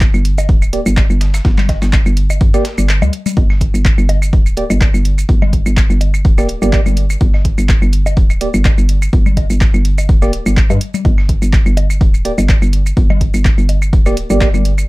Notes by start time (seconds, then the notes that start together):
0.01 kick, snare, clap, closed hi-hat
0.14 G1, claves, shaker
0.25 closed hi-hat
0.38 high bongo, claves, shaker
0.49 D1, kick, closed hi-hat
0.62 claves, shaker
0.73 A#3 G4 D5, closed hi-hat
0.86 G1, claves, shaker
0.97 kick, snare, clap, closed hi-hat, high bongo
1.10 G1, claves, shaker
1.21 snare, closed hi-hat
1.34 snare, closed hi-hat, claves, shaker
1.45 G1, kick, snare, closed hi-hat
1.58 snare, clap, closed hi-hat, low conga, claves
1.69 kick, snare, closed hi-hat, high bongo
1.82 G1, snare, closed hi-hat, claves, shaker
1.93 kick, snare, clap, closed hi-hat
2.06 G1, claves, shaker
2.17 closed hi-hat
2.30 high bongo, claves, shaker
2.41 G2, kick, closed hi-hat
2.54 A#3 G4 D5, snare, closed hi-hat, claves, shaker
2.65 snare, closed hi-hat
2.78 G1, claves, shaker
2.89 snare, clap, closed hi-hat
3.02 D2, high bongo, low conga, claves, shaker
3.13 closed hi-hat
3.26 low conga, claves, shaker
3.37 G1, kick, closed hi-hat, high bongo
3.50 snare, claves
3.61 kick, closed hi-hat
3.74 G1, claves, shaker
3.85 kick, snare, clap, closed hi-hat
3.98 G1, claves, shaker
4.09 closed hi-hat, high bongo
4.22 claves, shaker
4.33 D1, kick, closed hi-hat
4.46 claves, shaker
4.57 A#3 G4 D5, closed hi-hat
4.70 G1, high bongo, claves, shaker
4.81 kick, snare, clap, closed hi-hat
4.94 G1, claves, shaker
5.05 closed hi-hat
5.18 claves, shaker
5.29 G1, kick, closed hi-hat
5.42 high bongo, low conga, claves
5.53 kick, closed hi-hat
5.66 G1, claves, shaker
5.77 kick, snare, clap, closed hi-hat
5.90 G1, claves, shaker
6.01 closed hi-hat, high bongo
6.14 claves, shaker
6.25 D1, kick, closed hi-hat
6.38 A#3 G4 D5, snare, claves, shaker
6.49 closed hi-hat
6.62 G1 A#3 G4 D5, claves, shaker
6.73 A#3 G4 D5, kick, snare, clap, closed hi-hat, high bongo
6.86 G1, low conga, claves, shaker
6.97 closed hi-hat
7.10 claves, shaker
7.21 G1, kick, closed hi-hat
7.34 snare, high bongo, claves
7.45 kick, closed hi-hat
7.58 G1, claves, shaker
7.69 kick, snare, clap, closed hi-hat
7.82 G1, claves, shaker
7.93 closed hi-hat
8.06 high bongo, claves, shaker
8.17 D1, kick, closed hi-hat
8.30 claves, shaker
8.41 A#3 G4 D5, closed hi-hat
8.54 G1, claves, shaker
8.65 kick, snare, clap, closed hi-hat, high bongo
8.78 G1, claves, shaker
8.89 closed hi-hat
9.02 claves, shaker
9.13 G1, kick, closed hi-hat
9.26 low conga, claves, shaker
9.37 kick, closed hi-hat, high bongo
9.50 G1, claves, shaker
9.61 kick, snare, clap, closed hi-hat
9.74 G1, claves, shaker
9.85 closed hi-hat
9.98 high bongo, claves, shaker
10.09 D1, kick, closed hi-hat
10.22 A#3 G4 D5, snare, claves, shaker
10.33 closed hi-hat
10.46 G1, claves, shaker
10.57 kick, snare, clap, closed hi-hat
10.70 G2, high bongo, low conga, claves, shaker
10.81 closed hi-hat
10.94 low conga, claves, shaker
11.05 G1, kick, closed hi-hat, high bongo
11.18 snare, claves
11.29 kick, closed hi-hat
11.42 G1, claves, shaker
11.53 kick, snare, clap, closed hi-hat
11.66 G1, claves, shaker
11.77 closed hi-hat, high bongo
11.90 claves, shaker
12.01 D1, kick, closed hi-hat
12.14 claves, shaker
12.25 A#3 G4 D5, closed hi-hat
12.38 G1, high bongo, claves, shaker
12.49 kick, snare, clap, closed hi-hat
12.62 G1, claves, shaker
12.73 closed hi-hat
12.86 claves, shaker
12.97 G1, kick, closed hi-hat
13.10 high bongo, low conga, claves
13.21 kick, closed hi-hat
13.34 G1, claves, shaker
13.45 kick, snare, clap, closed hi-hat
13.58 G1, claves, shaker
13.69 closed hi-hat, high bongo
13.82 claves, shaker
13.93 D1, kick, closed hi-hat
14.06 A#3 G4 D5, snare, claves, shaker
14.17 closed hi-hat
14.30 G1 A#3 G4 D5, claves, shaker
14.41 A#3, kick, snare, clap, closed hi-hat, high bongo
14.54 G1, low conga, claves, shaker
14.65 closed hi-hat
14.78 claves, shaker